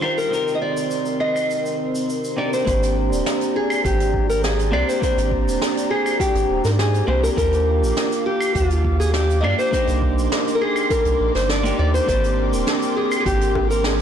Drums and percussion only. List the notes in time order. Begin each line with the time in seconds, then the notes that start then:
0.02 claves
0.18 shaker
0.33 shaker
0.48 shaker
0.77 shaker
0.91 shaker
1.06 shaker
1.20 claves
1.36 claves, shaker
1.50 shaker
1.66 shaker
1.95 shaker
2.10 shaker
2.24 shaker
2.53 shaker
2.67 kick, closed hi-hat, shaker
2.83 closed hi-hat, shaker
3.13 shaker
3.26 snare, closed hi-hat, shaker
3.41 closed hi-hat, shaker
3.70 claves, shaker
3.85 kick, closed hi-hat, shaker
4.00 closed hi-hat, shaker
4.14 kick
4.30 shaker
4.44 snare, closed hi-hat, shaker
4.59 closed hi-hat, shaker
4.73 claves
4.89 shaker
5.02 kick, closed hi-hat, shaker
5.18 closed hi-hat, shaker
5.32 kick
5.48 shaker
5.62 snare, closed hi-hat, shaker
5.77 closed hi-hat, shaker
5.91 claves
6.06 claves, shaker
6.20 kick, closed hi-hat, shaker
6.35 closed hi-hat, shaker
6.65 snare, shaker
6.79 snare, closed hi-hat, shaker
6.94 closed hi-hat, shaker
7.24 shaker
7.37 kick, closed hi-hat, shaker
7.52 closed hi-hat, shaker
7.84 shaker
7.96 snare, closed hi-hat, shaker
8.12 closed hi-hat, shaker
8.41 claves, shaker
8.55 kick, closed hi-hat, shaker
8.70 closed hi-hat, shaker
8.85 kick
9.01 shaker
9.14 snare, closed hi-hat, shaker
9.30 closed hi-hat, shaker
9.44 claves
9.59 shaker
9.73 kick, closed hi-hat, shaker
9.87 closed hi-hat, shaker
10.02 kick
10.19 shaker
10.32 snare, closed hi-hat, shaker
10.47 closed hi-hat, shaker
10.62 claves
10.76 claves, shaker
10.90 kick, closed hi-hat, shaker
11.05 closed hi-hat, shaker
11.35 snare, shaker
11.49 snare, closed hi-hat, shaker
11.65 closed hi-hat, shaker
11.95 shaker
12.08 kick, closed hi-hat, shaker
12.24 closed hi-hat, shaker
12.53 shaker
12.67 snare, closed hi-hat, shaker
12.82 closed hi-hat, shaker
13.12 claves, shaker
13.26 kick, closed hi-hat, shaker
13.41 closed hi-hat, shaker
13.55 kick, high bongo
13.71 shaker
13.84 snare, closed hi-hat, shaker